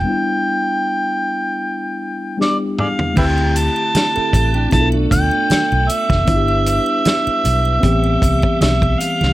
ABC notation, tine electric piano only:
X:1
M:4/4
L:1/8
Q:"Swing 16ths" 1/4=77
K:Ephr
V:1 name="Tine electric piano"
[G,B,DE]6 [G,B,DG]2 | [A,CEG]4 [B,DF^GA]4 | [B,DEFG]4 [E,B,CG]4 |]